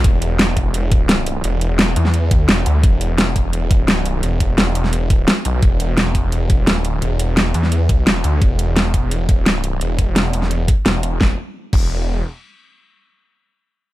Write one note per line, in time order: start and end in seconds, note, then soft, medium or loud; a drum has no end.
0.04 1.43 E1 loud
0.04 kick loud
0.04 closed hi-hat medium
0.22 closed hi-hat loud
0.39 snare loud
0.39 closed hi-hat medium
0.57 kick medium
0.57 closed hi-hat loud
0.74 closed hi-hat medium
0.92 kick loud
0.92 closed hi-hat medium
1.09 snare loud
1.09 closed hi-hat medium
1.26 closed hi-hat loud
1.44 1.95 E1 loud
1.44 closed hi-hat medium
1.61 closed hi-hat medium
1.79 snare loud
1.79 closed hi-hat medium
1.96 2.47 E2 loud
1.96 closed hi-hat medium
2.05 snare soft
2.14 closed hi-hat medium
2.31 kick loud
2.31 closed hi-hat medium
2.49 2.65 E1 loud
2.49 snare loud
2.49 closed hi-hat medium
2.66 2.82 D2 loud
2.66 closed hi-hat medium
2.83 3.83 E1 loud
2.83 kick loud
2.83 closed hi-hat medium
3.01 closed hi-hat medium
3.18 snare loud
3.18 closed hi-hat medium
3.36 kick medium
3.36 closed hi-hat medium
3.53 closed hi-hat medium
3.71 kick loud
3.71 closed hi-hat medium
3.83 4.05 D1 loud
3.88 snare loud
3.88 closed hi-hat medium
4.05 4.22 C1 loud
4.05 closed hi-hat medium
4.23 4.74 E1 loud
4.23 closed hi-hat medium
4.40 kick medium
4.40 closed hi-hat medium
4.58 snare loud
4.58 closed hi-hat medium
4.75 5.26 E1 medium
4.75 closed hi-hat medium
4.84 snare soft
4.93 closed hi-hat medium
5.10 kick loud
5.10 closed hi-hat medium
5.28 snare loud
5.28 closed hi-hat medium
5.45 5.61 B1 loud
5.45 closed hi-hat medium
5.63 6.60 E1 loud
5.63 kick loud
5.63 closed hi-hat medium
5.80 closed hi-hat medium
5.97 snare loud
5.97 closed hi-hat medium
6.15 kick medium
6.15 closed hi-hat medium
6.32 closed hi-hat medium
6.50 kick loud
6.50 closed hi-hat medium
6.60 6.88 D#1 loud
6.67 snare loud
6.67 closed hi-hat medium
6.85 7.01 D1 loud
6.85 closed hi-hat medium
7.02 7.53 E1 loud
7.02 closed hi-hat medium
7.20 closed hi-hat medium
7.37 snare loud
7.37 closed hi-hat medium
7.54 8.05 E2 loud
7.54 closed hi-hat medium
7.63 snare soft
7.72 closed hi-hat medium
7.89 kick loud
7.89 closed hi-hat medium
8.07 8.23 E1 medium
8.07 snare loud
8.07 closed hi-hat medium
8.24 8.40 D2 loud
8.24 closed hi-hat medium
8.42 9.42 E1 loud
8.42 kick loud
8.42 closed hi-hat medium
8.59 closed hi-hat loud
8.76 snare loud
8.76 closed hi-hat medium
8.94 kick medium
8.94 closed hi-hat medium
9.11 closed hi-hat medium
9.29 kick loud
9.29 closed hi-hat medium
9.42 9.64 D1 loud
9.46 snare loud
9.46 closed hi-hat medium
9.64 9.80 C1 loud
9.64 closed hi-hat medium
9.81 10.32 E1 loud
9.81 closed hi-hat medium
9.99 kick medium
9.99 closed hi-hat medium
10.16 snare loud
10.16 closed hi-hat medium
10.33 10.67 E1 medium
10.33 closed hi-hat medium
10.42 snare soft
10.51 closed hi-hat medium
10.68 kick loud
10.68 closed hi-hat medium
10.86 11.19 E1 loud
10.86 snare loud
10.86 closed hi-hat medium
11.03 closed hi-hat medium
11.21 11.30 E1 loud
11.21 kick loud
11.21 snare medium
11.73 12.22 E1 loud
11.73 kick loud
11.73 crash medium